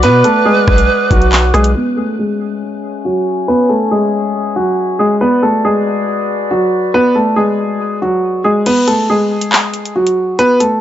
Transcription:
Already playing: B4 D5 F#5 D6
0.03 B2 B3 B4, closed hi-hat
0.24 A3 A4, closed hi-hat
0.45 G#3 G#4
0.68 B1, kick, cross-stick
0.78 closed hi-hat
1.11 B1 F#3 F#4, kick, closed hi-hat
1.22 closed hi-hat
1.32 clap, closed hi-hat
1.54 B1 G#3 G#4, cross-stick, closed hi-hat
1.64 closed hi-hat
1.76 B3 C#4 B4 C#5 E5 G#5
1.97 A3 A4
2.19 G#3 G#4
3.05 F#3 F#4
3.48 B3 B4
3.70 A3 A4
3.91 G#3 G#4
4.56 F#3 F#4
4.99 G#3 G#4
5.21 B3 F#4 B4 D5
5.43 A3 A4
5.65 G#3 G#4
6.51 F#3 F#4
6.94 B3 B4
7.15 A3 A4
7.36 G#3 G#4
8.02 F#3 F#4
8.44 G#3 G#4
8.66 B3 B4, closed hi-hat, crash
8.88 A3 A4, closed hi-hat
9.10 G#3 G#4
9.41 closed hi-hat
9.53 clap
9.74 closed hi-hat
9.86 closed hi-hat
9.96 F#3 F#4
10.07 closed hi-hat
10.39 B3 B4, closed hi-hat
10.60 A3 A4, closed hi-hat

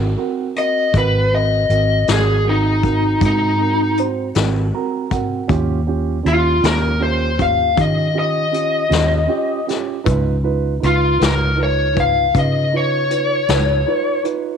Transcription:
Already playing: G#1
0.17 C4 F#4 A#4
0.56 C4 F#4 A#4 D#5, closed hi-hat
0.93 G#1 C4 F#4 A#4, kick, closed hi-hat
0.98 B4
1.31 C4 F#4 A#4 D#5
1.69 G#1 C4 F#4 A#4, closed hi-hat
2.07 G#1 C4 F#4 A#4, snare, closed hi-hat
2.12 G#4
2.44 C4 F#4 A#4
2.49 D#4
2.83 C4 F#4 A#4, kick, closed hi-hat
3.21 G#2 C4 F#4 A#4, kick, closed hi-hat
3.26 D#4
3.59 C4 F#4 A#4
3.97 C4 F#4 C5, closed hi-hat
4.35 G#1 C4 F#4 A#4, snare, closed hi-hat
4.74 C4 F#4 A#4 A#5
5.10 C4 F#4 A#4 F#5, kick, closed hi-hat
5.48 D#2 C#4 F4 G4, kick, closed hi-hat
5.87 C#4 F4 G4
6.23 D#2 C#4 F4 G4, closed hi-hat
6.28 F4
6.62 D#2 C#4 F4 G4 A#4, snare, closed hi-hat
6.99 C#4 F4 G4 C5
7.38 C#4 F4 G4 F5, kick, closed hi-hat
7.75 D#3 C#4 F4 G4, kick, closed hi-hat
7.81 D#5
8.14 C#4 F4 G4
8.19 D#5
8.52 C#4 F4 G4, closed hi-hat
8.89 D#2 C#4 F4 G4, closed hi-hat
8.93 snare
9.27 C#4 F4 G4
9.67 C#4 F4 G4, snare, closed hi-hat
10.04 C#2 D#4 F4 B4, kick, closed hi-hat
10.44 D#4 F4 B4
10.80 C#2 D#4 F4 B4, closed hi-hat
10.86 F4
11.18 C#2 D#4 F4 B4, closed hi-hat
11.22 A#4, snare
11.56 D#4 F4 B4
11.63 C#5
11.94 D#4 F4 B4, kick, closed hi-hat
12.00 F5
12.34 C#3 D#4 F4 B4, kick, closed hi-hat
12.39 D#5
12.72 D#4 F4 B4
12.77 C#5
13.10 D#4 F4 B4, closed hi-hat
13.48 C#2 D#4 F4 B4, snare, closed hi-hat
13.87 D#4 F4 B4
14.24 D#4 F4 B4, closed hi-hat

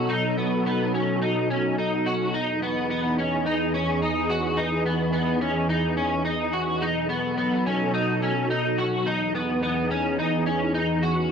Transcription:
Already playing: B2 F#3 D#4 A4
0.09 D#4
0.38 B3
0.66 B3
0.94 C#4
1.22 D#4
1.50 C#4
1.78 D#4
2.06 F#4
2.32 E2 E3 D#4 G#4
2.62 B3
2.90 B3
3.18 C#4
3.46 D#4
3.74 C#4
4.02 D#4
4.30 F#4
4.57 D#4
4.86 B3
5.13 B3
5.41 C#4
5.69 D#4
5.97 C#4
6.25 D#4
6.53 F#4
6.79 B2 F#3 D#4 A4
7.09 B3
7.37 B3
7.66 C#4
7.94 D#4
8.22 C#4
8.50 D#4
8.78 F#4
9.05 E2 E3 D#4 G#4
9.35 B3
9.63 B3
9.91 C#4
10.19 D#4
10.46 C#4
10.74 D#4
11.03 F#4
11.28 E3 D#4

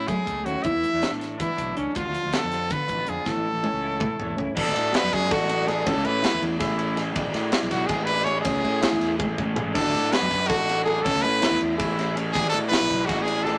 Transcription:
Already playing: F#2 F#3 A3
0.08 F#3 A3 E4 G#4, kick, closed hi-hat
0.25 C#2 A3, kick, closed hi-hat
0.45 D#2 C#4 E4 F#4, closed hi-hat
0.62 E2 E3 E4 E5, kick, closed hi-hat
0.75 E2
0.83 A3, closed hi-hat
0.93 E2
1.02 D4, snare, closed hi-hat
1.11 A2
1.20 A4, snare, closed hi-hat
1.37 E3 B3 D4 E4, kick, closed hi-hat
1.57 B1 D4, kick, closed hi-hat
1.77 C#2 C#4 D4 A4, closed hi-hat
1.94 D2 D3 F4, kick, closed hi-hat
2.07 D2
2.13 F3, closed hi-hat
2.25 D2
2.32 A3 D4 A4, snare, closed hi-hat
2.42 F2 B3
2.52 F4, snare, closed hi-hat
2.70 D3 B3 A4 B4, kick, closed hi-hat
2.88 A1 A3, kick, closed hi-hat
3.00 B3
3.07 F2 D4 F4 G#4, closed hi-hat
3.25 A1 A2 E4 A4, kick, snare
3.35 A1
3.44 E3
3.53 A1
3.63 C#4, high tom
3.73 C#2
3.83 E4
3.99 A2 A3 E4, kick, mid tom
4.19 E2 C#4, floor tom
4.37 C#2 C#4 E4, floor tom
4.55 A1 B2 F#3 B3 D4, kick, crash
4.59 A4
4.68 D2
4.74 A2 F#3 B3 D4, ride
4.92 B2 F#3 B3 D4 F#4 B4, snare, ride
5.03 F#2
5.13 F#2 G#4, kick, ride
5.31 A1 F#4 A4, kick, snare, ride
5.49 F#3 B3 D4, ride
5.67 B2 F#3 B3 D4 G#4 A4, snare, ride
5.86 A1 A2 E3 A3 C#4 E4 A4, kick, ride
5.96 C#2
6.05 A2 A3 C#4 E4 B4, ride
6.23 A2 E3 A3 C#4 E4, snare, ride
6.34 E2
6.42 E2, ride
6.60 A1 E4 G#4, kick, snare, ride
6.78 A3 C#4 E4, ride
6.96 E3 A3 C#4 E4 G#4, snare, ride
7.14 A1 E3 B3 D4 G#4, kick, ride
7.26 G#1
7.33 A2 B3 D4 G#4, snare, ride
7.52 E3 B3 D4 E4 G#4, snare, ride
7.62 B1
7.71 B1 F#4, kick, snare, ride
7.87 A1 G#4, kick, snare, ride
8.05 G#4 B4, ride
8.09 B3 D4
8.24 E3 B3 D4 G#4 C#5, ride
8.41 A2 E3 A3 C#4 G#4, kick, ride
8.46 A1 C#4 E4
8.55 C#2
8.64 A2 A3 C#4 E4, ride
8.82 A2 E3 A3 C#4 E4, snare, ride
8.92 E2
9.00 E2, snare, ride
9.19 A1 G#4, kick, high tom
9.38 A3 C#4 E4, kick
9.56 E3 A3 C#4 E4 G#4, floor tom
9.74 A1 B2 F#3 B3 D4 F#4 A4, kick, crash
9.85 D2
9.94 A2 B3 D4 F#4, snare, ride
10.11 B2 F#3 B3 D4 F#4 B4, snare, ride
10.22 F#2
10.31 F#2, kick, snare, ride
10.48 A1 F#4 A4, kick, ride
10.68 B3 D4 F#4, snare, ride
10.84 F#3 B3 D4 F#4 G#4 A4, ride
11.03 A1 A2 E3 A3 C#4 A4, kick, ride
11.07 C#4 E4
11.14 C#2
11.22 A2 A3 C#4 E4 B4, ride
11.40 A2 E3 A3 C#4 E4, snare, ride
11.51 E2
11.61 E2, ride
11.76 E4 G#4, kick, ride
11.81 A1
11.96 A3 C#4 E4, snare, ride
12.15 E3 A3 C#4 E4 G#4, ride
12.33 A1 E3 B3 D4 G#4, kick, ride
12.44 G#1
12.50 G#4 A4
12.54 A2 B3 D4, ride
12.69 E3 B3 E4 B4, ride
12.73 D4 G#4, snare
12.81 B1
12.91 B1, kick, ride
13.06 A1 F#4 G#4, kick, ride
13.10 snare
13.23 G#4
13.27 B3 D4 G#4, ride
13.44 E3 B3 D4 G#4 A4, snare, ride

